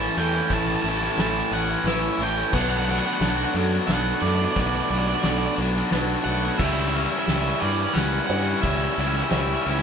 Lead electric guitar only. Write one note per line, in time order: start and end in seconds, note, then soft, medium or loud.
0.00 0.20 A5 loud
0.18 0.49 G5 loud
0.53 0.59 A5 loud
0.60 0.67 A5 medium
0.68 0.75 A5 medium
0.75 0.82 A5 medium
0.82 0.89 A5 medium
0.90 0.97 A5 medium
0.97 1.04 A5 medium
1.04 1.11 A5 medium
1.13 1.20 A5 medium
1.21 1.51 A5 medium
1.53 1.87 F#5 medium
1.87 2.22 E5 medium
2.23 2.54 G5 medium
2.55 2.61 F#5 medium
2.62 2.69 F#5 medium
2.70 2.77 F#5 medium
2.78 2.85 F#5 medium
2.85 2.91 F#5 medium
2.92 2.99 F#5 medium
3.00 3.06 F#5 medium
3.06 3.13 F#5 medium
3.14 3.21 F#5 medium
3.22 3.29 F#5 medium
3.30 3.37 F#5 medium
3.37 3.44 F#5 medium
3.45 3.52 F#5 medium
3.87 4.20 F#5 loud
4.21 4.28 D5 loud
4.28 4.36 D5 medium
4.36 4.44 D5 medium
4.45 4.51 D5 medium
4.52 4.60 D5 medium
4.61 4.66 D5 medium
4.67 4.75 D5 loud
4.76 4.83 D5 medium
4.83 4.90 D5 medium
4.91 4.98 D5 medium
4.99 5.07 D5 medium
5.07 5.15 D5 medium
5.15 5.23 D5 medium
5.23 5.30 D5 medium
5.31 5.38 D5 medium
5.38 5.46 D5 medium
5.46 5.54 D5 medium
6.24 6.57 F#5 loud
6.58 6.65 E5 loud
6.65 6.72 E5 medium
6.72 6.80 E5 medium
6.81 6.88 E5 medium
6.88 6.96 E5 medium
6.97 7.04 E5 medium
7.04 7.10 E5 loud
7.11 7.18 E5 medium
7.19 7.27 E5 medium
7.27 7.33 E5 medium
7.34 7.41 E5 medium
7.41 7.49 E5 medium
7.50 7.55 E5 medium
7.55 7.63 E5 medium
7.61 7.96 D5 medium
7.93 8.26 F#5 loud
8.27 8.61 F#5 loud
8.61 8.69 E5 medium
8.70 8.77 E5 medium
8.77 8.84 E5 medium
8.85 8.92 E5 medium
8.93 9.00 E5 medium
9.01 9.07 E5 medium
9.08 9.16 E5 medium
9.16 9.23 E5 medium
9.24 9.31 E5 medium
9.32 9.39 E5 medium
9.40 9.47 E5 medium
9.47 9.55 E5 medium
9.55 9.63 E5 medium
9.63 9.70 E5 medium
9.71 9.79 E5 medium